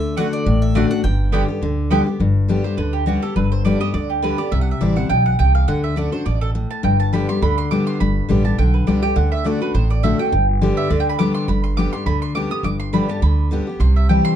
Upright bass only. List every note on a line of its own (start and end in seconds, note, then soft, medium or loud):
0.00 0.26 D2 loud
0.46 0.84 A1 medium
1.04 1.42 G1 loud
1.62 2.00 D2 medium
2.20 2.58 G1 medium
2.78 3.16 D2 medium
3.36 3.74 G1 medium
3.94 4.32 D2 medium
4.52 4.71 C2 medium
4.81 5.06 A1 medium
5.10 5.35 B1 medium
5.40 5.64 C2 medium
5.68 6.06 D2 medium
6.26 6.64 A1 medium
6.84 7.22 G1 medium
7.42 7.80 D2 medium
8.01 8.19 G1 medium
8.29 8.54 A1 medium
8.59 8.83 B1 medium
8.87 9.12 C2 medium
9.16 9.54 D2 medium
9.74 10.12 A1 medium
10.32 10.70 G1 loud
10.90 11.28 D2 medium
11.48 11.86 G1 medium
12.06 12.44 D2 medium
12.63 13.01 G1 medium
13.22 13.60 D2 medium
13.80 14.18 C2 loud